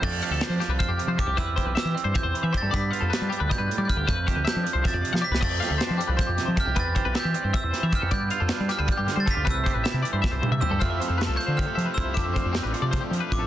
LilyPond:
<<
  \new Staff \with { instrumentName = "Glockenspiel" } { \time 7/8 \key f \lydian \tempo 4 = 156 a'''2 f'''4 d'''8 | e'''4 e'''4 g'''4 a'''8 | b'''2 g'''8.~ g'''32 g'''32 f'''8 | g'''4 g'''4 a'''4 b'''8 |
a'''4. r8 g'''4 f'''8 | a'''4 g'''4 e'''4 f'''8 | g'''4. f'''8 g'''8. a'''16 b'''8 | e'''2~ e'''8 r8 e'''8 |
f'''4. g'''8 f'''4 e'''8 | d'''4. r4. d'''8 | }
  \new Staff \with { instrumentName = "Clean electric guitar" } { \time 7/8 \key f \lydian d''8 f''16 a'16 c''8 g'16 b'16 c''16 g'8 c''16 a'16 g'16 | b'8 c''16 b'16 e''8 d''16 c''16 e''16 c''8 e''16 c''16 a'16 | d''8 f''16 a'16 b'8 g'16 b'16 d''16 b'8 d''16 b'16 g'16 | b'8 c''16 b'16 e''8 d''16 c''16 e''16 d''8 f''16 d''16 b'16 |
d''8 f''16 a'16 c''8 g'16 b'16 c''16 g'8 c''16 a'16 g'16 | b'8 c''16 b'16 e''8 d''16 c''16 e''16 c''8 e''16 c''16 a'16 | d''8 f''16 a'16 b'8 g'16 b'16 d''16 g'8 c''16 a'16 g'16 | b'8 c''16 b'16 e''8 d''16 c''16 e''16 c''8 e''16 c''16 a'16 |
c''16 e''16 c''16 a'16 b'16 a'16 c''16 c''8 a'16 e''16 b'16 c''8 | e''8 c''8 g'16 b'16 a'16 d''16 c''16 g'8 b'8 a'16 | }
  \new Staff \with { instrumentName = "Overdriven electric guitar" } { \time 7/8 \key f \lydian r2. r8 | r2. r8 | r2. r8 | r2. r8 |
r2. r8 | r2. r8 | r2. r8 | r2. r8 |
<f a c' f'>8 <a c' f'>8 <f a c' f'>8 <a c' f'>4 <a c' f'>8 <f a c' f'>8 | <f a d' f'>8 <a d' f'>8 <f a d' f'>8 <a d' f'>4 <a d' f'>8 <f a d' f'>8 | }
  \new Staff \with { instrumentName = "Clean electric guitar" } { \time 7/8 \key f \lydian << { <f a d' g'>8 g'8 d'2 g'8 | <c' e' g'>8 g'8 g'2 g'8 | b8 f'8 d'2~ d'8 | a8 g'8 d'2 g'8 |
a8 g'8 d'2 g'8 | <c' e' g'>8 g'8 g'2 g'8 | b8 f'8 d'2 f'8 | a8 g'8 e'2 g'8 |
<f a e' g'>4 a4 g'4 e'8 | c'4 c'2~ c'8 | } \\ { f,4. f4 c4 | e4. c'4 e4 | g,4. g8 b,8 a,8 g,8 | f,4. f4 c4 |
f,4. f4 c4 | e4. c'4 e4 | g,4. g4 d4 | c4. e4 g,4 |
f,4. f4 c4 | f,4. f4. f,8 | } >> }
  \new Staff \with { instrumentName = "Fingered electric bass" } { \clef bass \time 7/8 \key f \lydian f,8 r16 d,16 r16 f16 r16 c,16 r16 f,16 r16 f16 r16 c,16 | e,8 r16 b,,16 r16 e16 r16 g,16 r16 e,16 r16 e16 r16 g,16 | g,8 r16 f,16 r16 g16 r16 d,16 r16 g,16 r16 g16 r16 d,16 | f,8 r16 d,16 r16 f16 r16 c,16 r16 f,16 r16 f16 r16 c,16 |
f,8 r16 d,16 r16 f16 r16 c,16 r16 f,16 r16 f16 r16 c,16 | e,8 r16 b,,16 r16 e16 r16 g,16 r16 e,16 r16 e16 r16 f,16 | g,8 r16 f,16 r16 g16 r16 d,16 r16 g,16 r16 g16 r16 d,16 | c,8 r16 a,,16 r16 c16 r16 g,16 r16 c,16 r16 c16 r16 g,16 |
f,8 r16 f,8 c,16 r16 d8 r16 f16 r16 c,8 | f,8 r16 f,8 a,,16 r16 c8 r16 f16 r16 a,,8 | }
  \new DrumStaff \with { instrumentName = "Drums" } \drummode { \time 7/8 <cymc bd>8 hh8 <hh sn>8 <hh sn>8 <hh bd>8 hh8 <hh bd>8 | <hh bd>8 <hh bd>8 <hh sn>8 hh8 <hh bd>8 hh8 <hh bd>8 | <hh bd>8 hh8 <hh sn>8 hh8 <hh bd>8 hh8 <hh bd>8 | <hh bd>8 <hh bd>8 <hh sn>8 hh8 <hh bd sn>8 hh16 sn8 sn16 |
<cymc hh bd>8 <hh sn>8 <hh sn>8 hh8 <hh bd sn>8 <hh sn>8 <hh bd>8 | <hh bd>8 <hh bd>8 <hh sn>8 hh8 <hh bd>8 <hh sn>8 <hh bd>8 | <hh bd>8 hh8 <hh sn>8 <hh sn>8 <hh bd>8 <hh sn>8 <hh bd>8 | <hh bd>8 <hh bd>8 <hh sn>8 hh8 <bd sn>8 toml8 tomfh8 |
<hh bd>8 hh8 <hh sn>8 hh8 <hh bd>8 hh8 <hh bd>8 | <hh bd>8 <hh bd>8 <hh sn>8 hh8 <hh bd sn>8 hh8 <hh bd>8 | }
>>